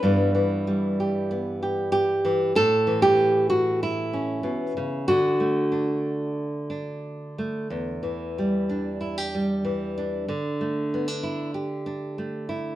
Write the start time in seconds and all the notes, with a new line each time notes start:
Already playing: B4
0.03 G2 E3 G3 B3
0.35 E3
0.67 G3
1.00 G4
1.31 B3
1.63 G4
1.92 G4
2.25 E3
2.55 A2 A4
2.87 E3
3.02 G4
3.50 F#4
3.83 E4
4.13 C#4
4.43 B2
4.77 C#3
5.08 D3 F#4
5.40 A3
5.72 D4
6.70 D4
7.38 A3
7.70 E2
8.03 E3
8.38 G3
8.69 D4
9.01 E4
9.18 G4
9.35 G3
9.65 E3
9.98 D4
10.28 D3
10.61 A3
10.94 B3
11.08 D4
11.23 E4
11.54 G4
11.86 D4
12.18 A3
12.49 E4